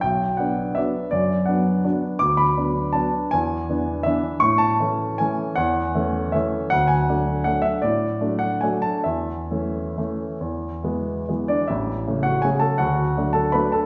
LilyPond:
<<
  \new Staff \with { instrumentName = "Grand piano" } { \time 3/4 \key b \minor \tempo 4 = 160 g''4 fis''4 e''4 | d''4 fis''4. r8 | \key a \major d'''8 b''4. a''4 | gis''2 e''4 |
cis'''8 a''4. gis''4 | fis''2 e''4 | fis''8 gis''4. fis''8 e''8 | d''4. fis''8 gis''8 a''8 |
e''2.~ | e''2 r8 <d' d''>8 | <e' e''>4. <fis' fis''>8 <gis' gis''>8 <a' a''>8 | <fis' fis''>4. <a' a''>8 <b' b''>8 <a' a''>8 | }
  \new Staff \with { instrumentName = "Grand piano" } { \time 3/4 \key b \minor b,,4 <fis b d'>4 <fis b d'>4 | fis,4 <fis b d'>4 <fis b d'>4 | \key a \major d,4 <fis b d'>4 <fis b d'>4 | e,4 <e b d'>4 <e b d'>4 |
a,4 <e a cis'>4 <e a cis'>4 | e,4 <e a cis'>4 <e a cis'>4 | d,4 <fis a d'>4 <fis a d'>4 | a,4 <fis a d'>4 <fis a d'>4 |
e,4 <e a cis'>4 <e a cis'>4 | e,4 <e gis b>4 <e gis b>4 | a,,4 <cis a cis'>4 <cis a cis'>4 | d,4 <fis a d'>4 <fis a d'>4 | }
>>